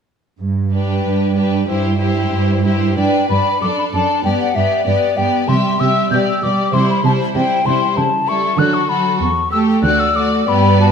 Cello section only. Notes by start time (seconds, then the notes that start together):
0.40 G2
1.05 G2
1.67 G2
2.31 G2
2.97 G2
3.29 G2
3.62 F#2
3.94 F#2
4.25 G2
4.56 G2
4.87 G2
5.18 G2
5.48 C3
5.80 C3
6.11 B2
6.43 B2
6.73 C3
7.04 C3
7.35 C3
7.66 C3
7.97 C#3
8.58 D3
9.21 E2
9.84 D2
10.47 G2